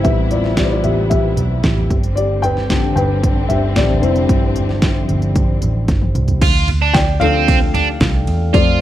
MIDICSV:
0, 0, Header, 1, 7, 480
1, 0, Start_track
1, 0, Tempo, 530504
1, 45, Time_signature, 4, 2, 24, 8
1, 7971, End_track
2, 0, Start_track
2, 0, Title_t, "Felt piano"
2, 0, Program_c, 0, 0
2, 0, Control_c, 0, 64, 127
2, 0, Note_on_c, 0, 48, 43
2, 0, Note_on_c, 0, 55, 40
2, 0, Note_on_c, 0, 59, 49
2, 0, Note_on_c, 0, 64, 52
2, 0, Note_on_c, 0, 67, 56
2, 0, Note_on_c, 0, 71, 67
2, 0, Note_on_c, 0, 72, 70
2, 0, Note_on_c, 0, 74, 76
2, 0, Note_on_c, 0, 76, 75
2, 0, Note_on_c, 0, 79, 80
2, 33, Note_off_c, 0, 48, 0
2, 33, Note_off_c, 0, 76, 0
2, 33, Note_on_c, 0, 48, 48
2, 33, Note_on_c, 0, 76, 87
2, 40, Note_off_c, 0, 55, 0
2, 40, Note_on_c, 0, 55, 42
2, 44, Note_off_c, 0, 59, 0
2, 44, Note_on_c, 0, 59, 53
2, 47, Note_off_c, 0, 67, 0
2, 47, Note_on_c, 0, 67, 65
2, 270, Note_off_c, 0, 67, 0
2, 276, Note_off_c, 0, 74, 0
2, 276, Note_on_c, 0, 74, 79
2, 287, Note_off_c, 0, 76, 0
2, 287, Note_on_c, 0, 65, 55
2, 331, Note_off_c, 0, 74, 0
2, 341, Note_off_c, 0, 65, 0
2, 358, Note_off_c, 0, 48, 0
2, 362, Note_off_c, 0, 55, 0
2, 364, Note_off_c, 0, 59, 0
2, 520, Note_on_c, 0, 74, 74
2, 532, Note_on_c, 0, 67, 60
2, 573, Note_off_c, 0, 72, 0
2, 573, Note_on_c, 0, 72, 60
2, 585, Note_off_c, 0, 67, 0
2, 585, Note_off_c, 0, 74, 0
2, 637, Note_on_c, 0, 74, 75
2, 640, Note_off_c, 0, 72, 0
2, 651, Note_on_c, 0, 65, 61
2, 760, Note_off_c, 0, 65, 0
2, 760, Note_on_c, 0, 76, 73
2, 765, Note_off_c, 0, 74, 0
2, 773, Note_on_c, 0, 67, 62
2, 982, Note_off_c, 0, 76, 0
2, 993, Note_off_c, 0, 67, 0
2, 996, Note_on_c, 0, 76, 75
2, 1008, Note_on_c, 0, 67, 64
2, 1684, Note_off_c, 0, 76, 0
2, 1691, Note_off_c, 0, 67, 0
2, 1736, Control_c, 0, 64, 0
2, 1737, Note_off_c, 0, 64, 0
2, 1737, Note_off_c, 0, 71, 0
2, 1743, Note_off_c, 0, 79, 0
2, 1899, Control_c, 0, 64, 127
2, 1950, Note_on_c, 0, 74, 91
2, 1968, Note_on_c, 0, 67, 69
2, 2190, Note_off_c, 0, 67, 0
2, 2192, Note_on_c, 0, 79, 108
2, 2205, Note_off_c, 0, 74, 0
2, 2210, Note_on_c, 0, 71, 69
2, 2440, Note_on_c, 0, 50, 50
2, 2446, Note_on_c, 0, 55, 48
2, 2450, Note_on_c, 0, 60, 56
2, 2655, Note_off_c, 0, 71, 0
2, 2662, Note_off_c, 0, 79, 0
2, 2675, Note_on_c, 0, 79, 94
2, 2689, Note_on_c, 0, 71, 77
2, 3134, Note_off_c, 0, 71, 0
2, 3155, Note_on_c, 0, 76, 83
2, 3168, Note_on_c, 0, 67, 67
2, 3175, Note_off_c, 0, 79, 0
2, 3390, Note_off_c, 0, 67, 0
2, 3392, Note_off_c, 0, 50, 0
2, 3392, Note_off_c, 0, 55, 0
2, 3398, Note_off_c, 0, 60, 0
2, 3401, Note_on_c, 0, 74, 88
2, 3405, Note_on_c, 0, 55, 40
2, 3406, Note_on_c, 0, 50, 43
2, 3408, Note_off_c, 0, 76, 0
2, 3412, Note_on_c, 0, 60, 50
2, 3415, Note_on_c, 0, 67, 63
2, 3622, Note_off_c, 0, 50, 0
2, 3622, Note_off_c, 0, 55, 0
2, 3625, Note_off_c, 0, 60, 0
2, 3626, Note_off_c, 0, 74, 0
2, 3634, Note_off_c, 0, 67, 0
2, 3636, Note_on_c, 0, 50, 48
2, 3637, Note_on_c, 0, 72, 88
2, 3642, Note_on_c, 0, 55, 47
2, 3648, Note_on_c, 0, 60, 58
2, 3650, Note_on_c, 0, 64, 58
2, 4325, Note_off_c, 0, 50, 0
2, 4328, Note_off_c, 0, 55, 0
2, 4331, Note_off_c, 0, 60, 0
2, 5285, Note_off_c, 0, 72, 0
2, 5292, Note_off_c, 0, 64, 0
2, 5819, Control_c, 0, 64, 0
2, 5961, Control_c, 0, 64, 127
2, 6275, Note_on_c, 0, 79, 106
2, 6294, Note_on_c, 0, 74, 74
2, 6512, Note_on_c, 0, 77, 121
2, 6514, Note_off_c, 0, 74, 0
2, 6521, Note_on_c, 0, 53, 57
2, 6524, Note_on_c, 0, 57, 50
2, 6528, Note_off_c, 0, 79, 0
2, 6532, Note_on_c, 0, 69, 84
2, 6533, Note_on_c, 0, 62, 60
2, 6843, Note_off_c, 0, 53, 0
2, 6844, Note_off_c, 0, 57, 0
2, 6849, Note_off_c, 0, 62, 0
2, 7693, Note_off_c, 0, 69, 0
2, 7717, Note_on_c, 0, 74, 97
2, 7720, Note_on_c, 0, 53, 56
2, 7728, Note_on_c, 0, 57, 54
2, 7732, Note_on_c, 0, 65, 76
2, 7734, Note_on_c, 0, 60, 65
2, 7738, Control_c, 0, 64, 0
2, 7756, Note_off_c, 0, 77, 0
2, 7918, Control_c, 0, 64, 127
2, 7953, Note_off_c, 0, 65, 0
2, 7969, Note_off_c, 0, 74, 0
2, 7971, Note_off_c, 0, 53, 0
2, 7971, Note_off_c, 0, 57, 0
2, 7971, Note_off_c, 0, 60, 0
2, 7971, End_track
3, 0, Start_track
3, 0, Title_t, "Overdriven electric guitar"
3, 0, Program_c, 1, 29
3, 5808, Note_on_c, 1, 65, 105
3, 6035, Note_off_c, 1, 65, 0
3, 6168, Note_on_c, 1, 62, 74
3, 6281, Note_off_c, 1, 62, 0
3, 6526, Note_on_c, 1, 60, 72
3, 6864, Note_off_c, 1, 60, 0
3, 7008, Note_on_c, 1, 62, 76
3, 7121, Note_off_c, 1, 62, 0
3, 7726, Note_on_c, 1, 65, 95
3, 7955, Note_off_c, 1, 65, 0
3, 7971, End_track
4, 0, Start_track
4, 0, Title_t, "String section"
4, 0, Program_c, 2, 48
4, 0, Note_on_c, 2, 48, 61
4, 0, Note_on_c, 2, 52, 60
4, 0, Note_on_c, 2, 55, 59
4, 0, Note_on_c, 2, 64, 70
4, 45, Note_on_c, 2, 59, 61
4, 1692, Note_off_c, 2, 48, 0
4, 1693, Note_off_c, 2, 52, 0
4, 1694, Note_off_c, 2, 64, 0
4, 1709, Note_off_c, 2, 59, 0
4, 1727, Note_on_c, 2, 50, 75
4, 1731, Note_on_c, 2, 60, 81
4, 3613, Note_off_c, 2, 55, 0
4, 3646, Note_on_c, 2, 53, 69
4, 5771, Note_off_c, 2, 50, 0
4, 5773, Note_off_c, 2, 60, 0
4, 5785, Note_off_c, 2, 53, 0
4, 7971, End_track
5, 0, Start_track
5, 0, Title_t, "Picked electric bass"
5, 0, Program_c, 3, 34
5, 44, Note_on_c, 3, 33, 89
5, 729, Note_off_c, 3, 33, 0
5, 770, Note_on_c, 3, 33, 84
5, 1215, Note_off_c, 3, 33, 0
5, 1245, Note_on_c, 3, 35, 75
5, 1468, Note_off_c, 3, 35, 0
5, 1485, Note_on_c, 3, 33, 85
5, 1708, Note_off_c, 3, 33, 0
5, 1722, Note_on_c, 3, 31, 84
5, 2648, Note_off_c, 3, 31, 0
5, 2679, Note_on_c, 3, 31, 85
5, 3129, Note_off_c, 3, 31, 0
5, 3165, Note_on_c, 3, 31, 84
5, 3388, Note_off_c, 3, 31, 0
5, 3406, Note_on_c, 3, 33, 80
5, 3629, Note_off_c, 3, 33, 0
5, 3645, Note_on_c, 3, 29, 85
5, 3868, Note_off_c, 3, 29, 0
5, 3884, Note_on_c, 3, 31, 94
5, 4569, Note_off_c, 3, 31, 0
5, 4606, Note_on_c, 3, 31, 94
5, 5052, Note_off_c, 3, 31, 0
5, 5091, Note_on_c, 3, 33, 80
5, 5312, Note_off_c, 3, 33, 0
5, 5324, Note_on_c, 3, 31, 86
5, 5548, Note_off_c, 3, 31, 0
5, 5565, Note_on_c, 3, 36, 84
5, 5789, Note_off_c, 3, 36, 0
5, 5805, Note_on_c, 3, 38, 101
5, 6252, Note_off_c, 3, 38, 0
5, 6287, Note_on_c, 3, 38, 96
5, 7211, Note_off_c, 3, 38, 0
5, 7247, Note_on_c, 3, 36, 96
5, 7470, Note_off_c, 3, 36, 0
5, 7489, Note_on_c, 3, 40, 82
5, 7711, Note_off_c, 3, 40, 0
5, 7730, Note_on_c, 3, 41, 92
5, 7971, Note_off_c, 3, 41, 0
5, 7971, End_track
6, 0, Start_track
6, 0, Title_t, "Downlifter"
6, 0, Program_c, 4, 103
6, 0, Note_on_c, 4, 60, 65
6, 1966, Note_off_c, 4, 60, 0
6, 7971, End_track
7, 0, Start_track
7, 0, Title_t, "Drums"
7, 41, Note_on_c, 9, 42, 76
7, 42, Note_on_c, 9, 36, 107
7, 131, Note_off_c, 9, 42, 0
7, 133, Note_off_c, 9, 36, 0
7, 278, Note_on_c, 9, 42, 66
7, 280, Note_on_c, 9, 43, 54
7, 369, Note_off_c, 9, 42, 0
7, 370, Note_off_c, 9, 43, 0
7, 399, Note_on_c, 9, 38, 29
7, 490, Note_off_c, 9, 38, 0
7, 515, Note_on_c, 9, 42, 76
7, 517, Note_on_c, 9, 38, 101
7, 521, Note_on_c, 9, 36, 91
7, 524, Note_on_c, 9, 39, 78
7, 606, Note_off_c, 9, 42, 0
7, 607, Note_off_c, 9, 38, 0
7, 612, Note_off_c, 9, 36, 0
7, 615, Note_off_c, 9, 39, 0
7, 758, Note_on_c, 9, 42, 70
7, 758, Note_on_c, 9, 43, 57
7, 848, Note_off_c, 9, 43, 0
7, 849, Note_off_c, 9, 42, 0
7, 1003, Note_on_c, 9, 42, 80
7, 1004, Note_on_c, 9, 36, 95
7, 1093, Note_off_c, 9, 42, 0
7, 1095, Note_off_c, 9, 36, 0
7, 1239, Note_on_c, 9, 43, 61
7, 1242, Note_on_c, 9, 42, 74
7, 1330, Note_off_c, 9, 43, 0
7, 1332, Note_off_c, 9, 42, 0
7, 1479, Note_on_c, 9, 42, 59
7, 1482, Note_on_c, 9, 38, 86
7, 1483, Note_on_c, 9, 36, 95
7, 1489, Note_on_c, 9, 39, 75
7, 1570, Note_off_c, 9, 42, 0
7, 1572, Note_off_c, 9, 38, 0
7, 1573, Note_off_c, 9, 36, 0
7, 1580, Note_off_c, 9, 39, 0
7, 1604, Note_on_c, 9, 43, 60
7, 1695, Note_off_c, 9, 43, 0
7, 1723, Note_on_c, 9, 36, 85
7, 1724, Note_on_c, 9, 42, 61
7, 1813, Note_off_c, 9, 36, 0
7, 1814, Note_off_c, 9, 42, 0
7, 1841, Note_on_c, 9, 42, 45
7, 1931, Note_off_c, 9, 42, 0
7, 1965, Note_on_c, 9, 42, 75
7, 2055, Note_off_c, 9, 42, 0
7, 2203, Note_on_c, 9, 42, 60
7, 2204, Note_on_c, 9, 43, 54
7, 2293, Note_off_c, 9, 42, 0
7, 2295, Note_off_c, 9, 43, 0
7, 2325, Note_on_c, 9, 38, 32
7, 2416, Note_off_c, 9, 38, 0
7, 2443, Note_on_c, 9, 42, 75
7, 2444, Note_on_c, 9, 36, 92
7, 2444, Note_on_c, 9, 38, 96
7, 2451, Note_on_c, 9, 39, 79
7, 2533, Note_off_c, 9, 42, 0
7, 2534, Note_off_c, 9, 36, 0
7, 2534, Note_off_c, 9, 38, 0
7, 2542, Note_off_c, 9, 39, 0
7, 2686, Note_on_c, 9, 43, 62
7, 2687, Note_on_c, 9, 42, 65
7, 2777, Note_off_c, 9, 42, 0
7, 2777, Note_off_c, 9, 43, 0
7, 2926, Note_on_c, 9, 36, 95
7, 2928, Note_on_c, 9, 42, 84
7, 3017, Note_off_c, 9, 36, 0
7, 3018, Note_off_c, 9, 42, 0
7, 3162, Note_on_c, 9, 43, 61
7, 3165, Note_on_c, 9, 42, 78
7, 3253, Note_off_c, 9, 43, 0
7, 3256, Note_off_c, 9, 42, 0
7, 3402, Note_on_c, 9, 42, 63
7, 3403, Note_on_c, 9, 36, 95
7, 3404, Note_on_c, 9, 38, 92
7, 3412, Note_on_c, 9, 39, 81
7, 3492, Note_off_c, 9, 42, 0
7, 3494, Note_off_c, 9, 36, 0
7, 3495, Note_off_c, 9, 38, 0
7, 3502, Note_off_c, 9, 39, 0
7, 3526, Note_on_c, 9, 43, 63
7, 3616, Note_off_c, 9, 43, 0
7, 3646, Note_on_c, 9, 42, 64
7, 3736, Note_off_c, 9, 42, 0
7, 3761, Note_on_c, 9, 42, 50
7, 3851, Note_off_c, 9, 42, 0
7, 3883, Note_on_c, 9, 36, 112
7, 3884, Note_on_c, 9, 42, 76
7, 3974, Note_off_c, 9, 36, 0
7, 3974, Note_off_c, 9, 42, 0
7, 4123, Note_on_c, 9, 42, 69
7, 4125, Note_on_c, 9, 43, 52
7, 4214, Note_off_c, 9, 42, 0
7, 4215, Note_off_c, 9, 43, 0
7, 4246, Note_on_c, 9, 38, 30
7, 4336, Note_off_c, 9, 38, 0
7, 4361, Note_on_c, 9, 42, 78
7, 4362, Note_on_c, 9, 38, 100
7, 4364, Note_on_c, 9, 36, 94
7, 4370, Note_on_c, 9, 39, 84
7, 4452, Note_off_c, 9, 42, 0
7, 4453, Note_off_c, 9, 38, 0
7, 4454, Note_off_c, 9, 36, 0
7, 4460, Note_off_c, 9, 39, 0
7, 4604, Note_on_c, 9, 42, 64
7, 4604, Note_on_c, 9, 43, 62
7, 4694, Note_off_c, 9, 43, 0
7, 4695, Note_off_c, 9, 42, 0
7, 4724, Note_on_c, 9, 42, 49
7, 4814, Note_off_c, 9, 42, 0
7, 4845, Note_on_c, 9, 42, 88
7, 4846, Note_on_c, 9, 36, 105
7, 4936, Note_off_c, 9, 42, 0
7, 4937, Note_off_c, 9, 36, 0
7, 5081, Note_on_c, 9, 43, 59
7, 5084, Note_on_c, 9, 42, 78
7, 5172, Note_off_c, 9, 43, 0
7, 5174, Note_off_c, 9, 42, 0
7, 5322, Note_on_c, 9, 42, 63
7, 5323, Note_on_c, 9, 38, 46
7, 5324, Note_on_c, 9, 36, 101
7, 5413, Note_off_c, 9, 42, 0
7, 5414, Note_off_c, 9, 38, 0
7, 5415, Note_off_c, 9, 36, 0
7, 5444, Note_on_c, 9, 48, 53
7, 5534, Note_off_c, 9, 48, 0
7, 5565, Note_on_c, 9, 45, 76
7, 5566, Note_on_c, 9, 42, 61
7, 5655, Note_off_c, 9, 45, 0
7, 5656, Note_off_c, 9, 42, 0
7, 5681, Note_on_c, 9, 42, 48
7, 5684, Note_on_c, 9, 43, 82
7, 5771, Note_off_c, 9, 42, 0
7, 5775, Note_off_c, 9, 43, 0
7, 5804, Note_on_c, 9, 51, 71
7, 5805, Note_on_c, 9, 36, 124
7, 5805, Note_on_c, 9, 49, 105
7, 5895, Note_off_c, 9, 36, 0
7, 5895, Note_off_c, 9, 49, 0
7, 5895, Note_off_c, 9, 51, 0
7, 6044, Note_on_c, 9, 51, 58
7, 6045, Note_on_c, 9, 43, 63
7, 6134, Note_off_c, 9, 51, 0
7, 6136, Note_off_c, 9, 43, 0
7, 6283, Note_on_c, 9, 51, 68
7, 6284, Note_on_c, 9, 38, 118
7, 6286, Note_on_c, 9, 36, 97
7, 6291, Note_on_c, 9, 39, 96
7, 6373, Note_off_c, 9, 51, 0
7, 6374, Note_off_c, 9, 38, 0
7, 6376, Note_off_c, 9, 36, 0
7, 6382, Note_off_c, 9, 39, 0
7, 6525, Note_on_c, 9, 43, 69
7, 6525, Note_on_c, 9, 51, 64
7, 6615, Note_off_c, 9, 43, 0
7, 6616, Note_off_c, 9, 51, 0
7, 6770, Note_on_c, 9, 36, 111
7, 6770, Note_on_c, 9, 51, 78
7, 6860, Note_off_c, 9, 36, 0
7, 6861, Note_off_c, 9, 51, 0
7, 7006, Note_on_c, 9, 43, 64
7, 7008, Note_on_c, 9, 51, 72
7, 7096, Note_off_c, 9, 43, 0
7, 7099, Note_off_c, 9, 51, 0
7, 7244, Note_on_c, 9, 51, 56
7, 7246, Note_on_c, 9, 38, 106
7, 7247, Note_on_c, 9, 36, 109
7, 7254, Note_on_c, 9, 39, 86
7, 7334, Note_off_c, 9, 51, 0
7, 7337, Note_off_c, 9, 36, 0
7, 7337, Note_off_c, 9, 38, 0
7, 7344, Note_off_c, 9, 39, 0
7, 7486, Note_on_c, 9, 51, 57
7, 7576, Note_off_c, 9, 51, 0
7, 7727, Note_on_c, 9, 51, 73
7, 7728, Note_on_c, 9, 36, 122
7, 7817, Note_off_c, 9, 51, 0
7, 7818, Note_off_c, 9, 36, 0
7, 7971, End_track
0, 0, End_of_file